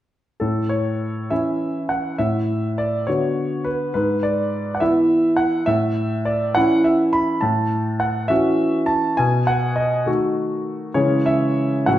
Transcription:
grand piano
0.40 A2 A4
0.69 C#5
1.30 E3 C#4 E4 E5
1.89 F#5
2.18 A2 E5
2.78 D5
3.07 D3 B3 F#4 C#5
3.64 B4
3.94 G#2 B4
4.23 D5
4.75 F#5
4.80 E3 B3 E4 E5
5.37 F#5
5.66 A2 E5
6.25 D5
6.55 E3 C#4 E4 F#5
6.84 E5
7.13 B5
7.41 A2 A5
8.00 F#5
8.28 E3 C#4 F#4 E5
8.86 A5
9.17 B2 G#5
9.47 F#5
9.76 D#5
10.06 D#3 A3 F#4
10.94 C#3 E3 G#3 C#4 C#5
11.26 E5
11.86 A2 E3 F#3 C#4 F#5

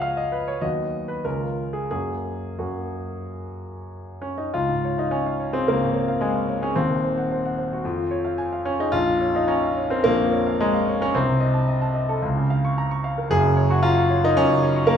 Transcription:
grand piano
Already playing: C#2 F3 G#3 G#4 D#5 F5 F#5
0.02 F5
0.17 D#5
0.32 B4
0.48 C#5
0.61 D#2 F#3 B3 F#4 D#5
1.08 B4
1.25 C#2 G#3 C#4 F4 A#4
1.73 G#4
1.91 F#2 A#3 C#4 F#4 G#4
2.59 F#2 A#3 C#4 F#4
4.22 C#4
4.38 D#4
4.54 C#2 F4
4.69 G#2
4.84 C#5
4.98 D#4 F5
5.11 C#4 G#5
5.26 F5
5.40 C#5
5.53 C4 G#4
5.68 C#2 A#3
5.80 G#2
5.93 C#5
6.08 F5
6.21 G#3 G#5
6.35 F5
6.49 C#5
6.62 C#4 G#4
6.75 D#1 D#2 C4
6.90 D#3
7.04 C5
7.18 F#5
7.32 C5
7.45 F#5
7.58 C5
7.73 F#4
7.85 F2
7.97 F3
8.11 C#5
8.25 F5
8.38 G#5
8.53 F5
8.65 C#4 C#5
8.80 D#4 G#4
8.92 A#1 F4
9.07 F2
9.21 C#5
9.35 D#4 F5
9.48 C#4 A#5
9.63 F5
9.77 C#5
9.90 C4 A#4
10.04 A#1 A#3
10.20 F2
10.33 C#5
10.47 F5
10.60 G#3 A#5
10.74 F5
10.89 C#5
11.01 C#4 A#4
11.15 C2 C4
11.28 C3
11.40 D#5
11.54 A5
11.68 D#5
11.81 A5
11.94 D#5
12.09 A4
12.22 C#2
12.37 C#3
12.50 F5
12.65 C#6
12.78 A#5
12.91 C#6
13.04 F5
13.18 A#4
13.30 F#1 F#2 G#4
13.44 C#3
13.57 C#5
13.70 F#4 C#6
13.83 F4 A#5
13.98 C#6
14.10 C#5
14.24 D#4 A#4
14.37 F#2 C#4
14.50 C#3
14.63 C#5
14.76 C#6
14.87 A#3 A#5

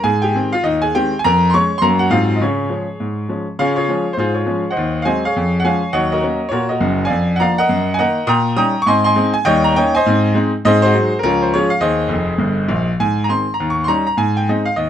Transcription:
grand piano
0.04 G#2 G#4 G#5
0.22 G4 G5
0.35 D#3 G#3 C4
0.52 F4 F5
0.63 D#2 D#4 D#5
0.82 G#4 G#5
0.94 D#3 G#3 C4 G4 G5
1.19 G#5
1.24 F2 A#4 A#5
1.50 C6
1.54 G#3 C#4 C#5 C#6
1.78 F#2 F#3 A#5 C6
1.82 A#3 C#4 A#4
1.99 F#4 F#5
2.10 G#2 F#3 G#3 C4 F4 F5
2.36 D#5
2.42 C#3 C#4 G#4 C#5
2.69 F3 G#3 C#4
3.00 G#2
3.29 F3 G#3 C#4
3.59 C#3 F4 G#4 C#5 F5
3.76 F4 G#4 C#5
3.89 F3 G#3 C#4
4.13 C5
4.17 G#2 F4 G#4 C5
4.34 F4 G#4 C#5
4.46 F3 G#3 C#4
4.71 C5 D#5 F#5
4.77 D#2
5.02 F#3 G#3 C4 F5 G#5
5.06 C5 D#5
5.25 G#4 C#5 F5
5.36 F2
5.60 F#5
5.64 F3 G#3 C#4 C#5 F5 G#5
5.93 D#2 F#3 C#5 D#5 F#5
6.12 F#4 A#4 D#5
6.24 F#3 A#3 C#4
6.52 A#2 F#4 A#4 C#5
6.69 F#4 A#4 D#5
6.80 F#1 F#2
7.05 D5 F5 G#5
7.10 F2
7.36 F3 F#5 A#5
7.40 A#3 D4 D5 F5
7.58 A#4 D#5 F#5
7.69 F#2
7.94 G#5
7.98 D#3 A#3 D#4 A#4 D#5 F#5
8.27 A#2 G5 A#5 D#6
8.56 G3 C#4 D#4 G5 A#5 D#6
8.82 C#6
8.86 G#2 C4 D#5 G#5 C6
9.04 D#5 G#5 C6
9.16 G#3 C4 D#4
9.34 G#5
9.45 D#2 G3 C#5 D#5 G5
9.64 A#5
9.76 A#3 C#4 D#4 C#5 D#5 G5
9.95 C5 D#5 G#5
10.06 G#2 C4
10.35 G#3 C4 D#4
10.65 G#2 C4 G#4 C5 D#5
10.82 F#4 G#4 C5
10.94 F#3 G#3 D#4
11.19 A#4
11.23 C#2 F3 C#4 F4 A#4
11.42 C5
11.54 F3 G#3 C#4 F4 G#4 C#5
11.70 F5
11.81 D#2 G#4 C5 D#5
12.08 F1 F2
12.38 G1 G2
12.68 A#1 A#2
13.00 G#2 G#5
13.24 A#5
13.29 D#3 G#3 C4 C6
13.54 A#5
13.60 D#2
13.70 C#6
13.84 G3 C#4 A#5 C6
13.88 D#4
14.07 A#5
14.17 G#2 G#5
14.37 G5
14.49 G#3 C4 D#4 D#5
14.65 F5
14.76 D#2 D#5

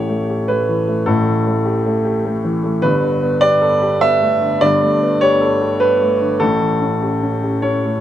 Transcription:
grand piano
Already playing: A1 A2 E3 A3 G4 C#5
0.09 A3
0.30 G4
0.48 A3 B4
0.69 E3
0.88 A3
1.06 A1 A2 A4
1.28 E3
1.47 A3
1.66 G4
1.86 A3
2.05 G4
2.25 A3
2.44 E3
2.64 A3
2.82 G1 G2 B4
3.03 D3
3.23 B3
3.41 G4 D5
3.62 A4
3.82 G4
4.01 B3 E5
4.21 A3
4.41 D3
4.61 G1 G2 D5
4.81 A3
5.02 B3
5.21 G4 C#5
5.41 A4
5.62 G4
5.80 B3 B4
6.01 A3
6.21 D3
6.40 A1 A2 A4
6.61 E3
6.81 C#4
7.02 G4
7.22 C#4
7.43 G4
7.62 C#4 C#5
7.84 A3

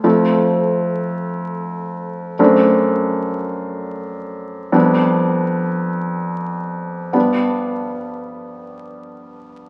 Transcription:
grand piano
0.04 F2 A3 C4 F4
2.39 F#2 A3 C4 D4
4.72 F2 G3 B3 D4
7.13 G2 G3 B3 D4

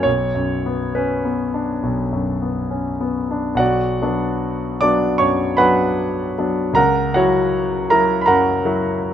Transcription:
grand piano
0.03 B1 C#5
0.35 F#2
0.66 B3
0.95 C#4 B4
1.25 B3
1.54 D4
1.83 B1
2.13 F#2
2.42 B3
2.71 C#4
3.01 B3
3.31 D4
3.55 B1 F#4 F#5
3.59 D5
4.02 F#3 B3 D4
4.81 F#3 B3 D4 D5 D6
5.18 F#2 C#5 C#6
5.57 F#3 B3 D4 B4 F#5 B5
6.38 F#3 B3 D4
6.73 C#2 A#4 F#5 A#5
7.14 F#3 E4 F#4 C#5 F#5
7.90 F#3 E4 F#4 A#4 A#5
8.21 B5
8.26 F#2 A#4 F#5 A#5
8.65 F#3 E4 F#4

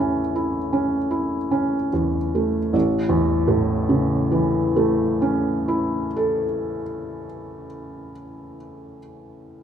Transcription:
felt piano
Already playing: A1 E2 A3 E4 A4 E5 A5
0.00 C#4
0.36 E4
0.73 C#4
1.11 E4
1.51 C#4
1.93 E2
2.35 A3
2.73 A1
3.09 E2
3.48 A2
3.89 C#3
4.32 E3
4.76 A3
5.22 C#4
5.68 E4
6.16 A4

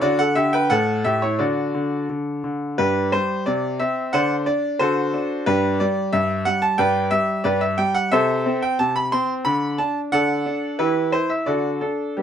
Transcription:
grand piano
0.01 D3 F#4 D5
0.19 A4 F#5
0.35 D3 G4 E5
0.53 B4 G5
0.70 A2 A4 F#5
1.04 A2 G4 E5
1.22 E4 C#5
1.39 D3 F#4 D5
1.74 D3
2.10 D3
2.44 D3
2.78 G2 D4 G4 B4
3.12 G3 C5
3.46 C3 D5
3.80 C4 E5
4.13 D3 C5 D5 F#5
4.46 D4 D5
4.79 D3 F#4 A4 C5
5.14 D4
5.46 G2 D4 G4 B4
5.80 G3 D5
6.13 G2 E5
6.45 G3 F#5
6.62 A5
6.78 G2 B4 D5 G5
7.11 G3 E5
7.44 G2 G4 B4 D5
7.61 E5
7.78 G3 G5
7.95 F#5
8.12 C3 A4 C5 E5
8.46 C4
8.62 G5
8.79 C3 A5
8.96 B5
9.12 C4 C6
9.45 D3 B5
9.78 D4 A5
10.12 D3 A4 D5 F#5
10.46 D4
10.79 E3 E4 G4 B4
11.12 E4 C5
11.30 E5
11.46 D3 F#4 A4 D5
11.81 D4 A4
12.17 G3 B3 D4 G4

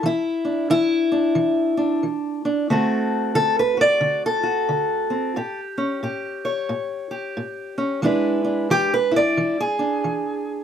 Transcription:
steel-string acoustic guitar
0.03 E3 E4
0.45 D4
0.70 E3 E4
1.12 D4
1.35 E3
1.77 D4
2.03 E3
2.45 D4
2.70 D3 A3 C4 F#4 A4
3.35 D3 A4
3.59 B4
3.77 F#4 D5
4.01 D3
4.26 A4
4.43 F#4
4.69 D3
5.10 C4
5.36 A2 G4
5.78 C#4
6.03 A2 G4
6.45 C#5
6.69 A2
7.11 G4
7.37 A2
7.78 C#4
8.02 E3 G#3 D4 E4 B4
8.45 D4
8.70 E3 G4
8.94 B4
9.11 E4
9.16 D5
9.37 E3
9.61 G#4
9.79 D4
10.04 E3

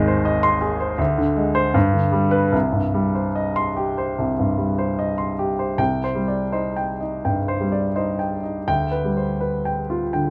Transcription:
grand piano
Already playing: G#1 D#2 G#3
0.08 C5
0.25 D#5
0.43 C6
0.61 G#4
0.80 C5
0.98 D2
1.18 D3
1.37 G#3
1.55 C5
1.74 G2
1.93 D3
2.12 G3
2.31 B4
2.52 C2
2.72 G2
2.94 G3
3.15 C5
3.36 D#5
3.56 C6
3.77 G4
3.98 C5
4.19 C2
4.39 G2
4.58 G3
4.78 C5
4.99 D#5
5.18 C6
5.39 G4
5.59 C5
5.78 C2 G5
6.04 C5
6.15 G3
6.28 D5
6.52 D#4 C5
6.76 G5
7.01 D#4
7.25 G2 G5
7.48 C5
7.60 G3
7.72 D5
7.96 D#4 C5
8.19 G5
8.43 D#4
8.68 D2 G5
8.91 B4
9.04 G3
9.17 C5
9.41 B4
9.65 G5
9.90 F4
10.13 D3 G5

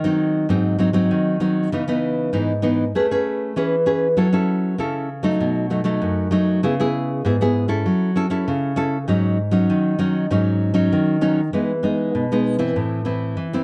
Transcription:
nylon-string guitar
Already playing: D#3
0.04 F#3 C4 D#4
0.49 G#2 F#3 C4 D#4
0.79 F#3 C4 D#4
0.93 F#3 C4 D#4
1.11 D#3
1.40 F#3 C4 D#4
1.72 C#3 E3 B3 D#4
1.88 E3 B3 D#4
2.33 G#2 E3 B3 D#4
2.62 E3 B3 D#4
2.95 A3 C#4 G#4 B4
3.11 C#4 G#4 B4
3.56 E3 C#4 G#4 B4
3.86 C#4 G#4 B4
4.17 F#3 C#4 E4 A4
4.33 C#4 E4 A4
4.78 C#3 C#4 E4 A4
5.23 F#3 A3 D#4
5.40 B2
5.70 F#3 A3 D#4
5.84 F#3 A3 D#4
6.02 F#2
6.31 F#3 A3 D#4
6.63 C#3 B3 E4 G#4
6.80 B3 E4 G#4
7.25 G#2 B3 E4 G#4
7.41 B3 E4 G#4
7.68 C#4 E4 A4
7.86 F#3
8.16 C#4 E4 A4
8.30 C#4 E4 A4
8.48 C#3
8.76 C#4 E4 A4
9.08 G#2 F#3 C#4 D#4
9.51 F#3 C#4 D#4
9.70 D#3
9.99 F#3 C#4 D#4
10.30 G#2 F#3 C#4 D#4
10.74 F#3 C#4 D#4
10.92 D#3
11.21 F#3 C#4 D#4
11.53 E3 G#3 B3 D#4
11.83 G#3 B3 D#4
12.15 B2
12.32 G#3 B3 D#4
12.59 E3 C4 E4
12.76 A2
13.05 E3 C4 E4
13.37 E3
13.53 E3 C4 E4

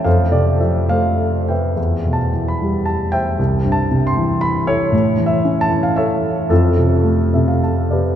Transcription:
grand piano
0.04 F2 A4 C5 F5
0.31 C3 D5
0.60 F3 E5
0.89 A3 A4 C5 F5
1.49 B4 E5 G5
1.76 E2
2.05 B2
2.13 A5
2.33 E3
2.48 B5
2.62 G3
2.86 A5
3.12 C5 E5 G5
3.39 C2
3.65 G2
3.72 A5
3.91 C3
4.07 C6
4.17 E3
4.41 B5
4.67 E4 A4 C#5
4.92 A2
5.17 E3
5.26 E5
5.45 C#4
5.61 A5
5.69 E3
5.83 F5
5.96 A4 C#5 E5
6.49 F2 C4 F4 A4
6.77 C3
7.04 A3
7.34 C3 E5
7.48 F5
7.63 A5
7.91 G4 B4 D5

